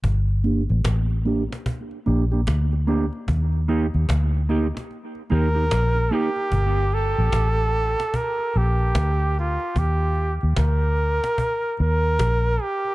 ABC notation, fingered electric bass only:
X:1
M:4/4
L:1/16
Q:"Swing 16ths" 1/4=74
K:Gm
V:1 name="Fingered electric bass" clef=bass
G,,,3 A,,, A,,,3 z3 B,,,2 D,,3 z | E,,3 E,, D,,3 z3 E,,2 B,,,2 z2 | G,,,3 A,,, A,,,3 z3 B,,,2 D,,3 z | E,,3 E,, D,,3 z3 E,,2 B,,,2 z2 |]